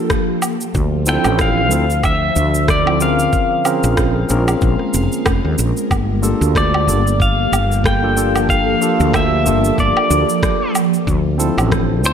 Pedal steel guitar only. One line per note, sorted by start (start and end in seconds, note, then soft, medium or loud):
1.09 1.38 G5 loud
1.41 2.05 F5 loud
2.05 2.71 E5 loud
2.70 3.02 D5 medium
3.02 5.56 F5 loud
6.57 7.23 D5 loud
7.22 7.86 F5 loud
7.86 8.49 G5 loud
8.50 9.15 F5 loud
9.16 9.81 E5 loud
9.80 10.72 D5 medium
12.06 12.13 C5 loud